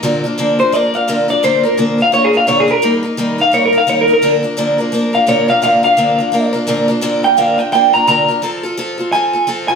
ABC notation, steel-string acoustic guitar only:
X:1
M:4/4
L:1/8
Q:"Swing" 1/4=172
K:Bb
V:1 name="Steel-string acoustic guitar"
[B,,D,F,B,DB] [F,B,DB] [B,,D,F,B,DB] [F,B,DB] [F,B,DB] [F,B,DB] [B,,D,F,B,DB] [F,B,DB] | [B,,D,F,B,DB] [F,B,DB] [B,,D,F,B,DB] [F,B,DB] [F,B,DB] [F,B,DB] [B,,D,F,B,DB] [F,B,DB] | [E,G,B,EB] [B,EB] [E,G,B,EB] [B,EB] [G,B,EB] [B,EB] [E,G,B,EB] [B,EB] | [B,,D,F,B,DB] [F,B,DB] [B,,D,F,B,DB] [F,B,DB] [F,B,DB] [F,B,DB] [B,,D,F,B,DB] [F,B,DB] |
[B,,D,F,B,DB] [F,B,DB] [B,,D,F,B,DB] [F,B,DB] [F,B,DB] [F,B,DB] [B,,D,F,B,DB] [F,B,DB] | [B,,D,F,B,DB] [F,B,DB] [B,,D,F,B,DB] [F,B,DB] [F,B,DB] [F,B,DB] [B,,D,F,B,DB] [F,B,DB] | [F,CFA] [CFA] [F,CFA] [CFA] [F,CFA] [CFA] [F,CFA] [CFA] |]